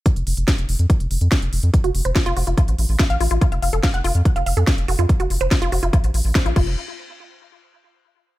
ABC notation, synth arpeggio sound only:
X:1
M:4/4
L:1/16
Q:1/4=143
K:F
V:1 name="Synth arpeggio sound"
z16 | z _G z c F F G F F z3 F f F F | F f f A f _g F z2 f f A z2 _G F | z _G z c F F G F F z3 c F F2 |
z16 |]